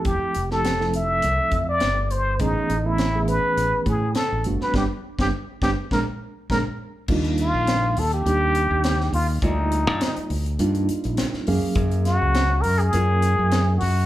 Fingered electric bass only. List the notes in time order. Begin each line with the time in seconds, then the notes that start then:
0.06 E1
0.23 muted fingered electric bass stroke
0.36 F1
1.24 C2
1.52 F2
1.83 G1
2.40 A1
2.70 A1
3.44 muted fingered electric bass stroke
3.57 A1
3.86 A2
4.32 A1
4.46 G1
4.61 muted fingered electric bass stroke
4.73 G1
5.19 G1
5.62 G1
5.92 A#1
6.50 A#1
7.09 D#2
7.54 A#1
7.96 D#2
8.26 D#2
8.71 D#2
9.13 D#2
9.42 D2
9.87 G2
10.17 muted fingered electric bass stroke
10.30 D2
10.60 G2
10.89 muted fingered electric bass stroke
11.05 A#1
11.34 muted fingered electric bass stroke
11.48 F#2
11.63 muted fingered electric bass stroke
11.76 F#2
12.22 C#2
12.65 F#2
12.94 F#2
13.39 F#2
13.82 F#2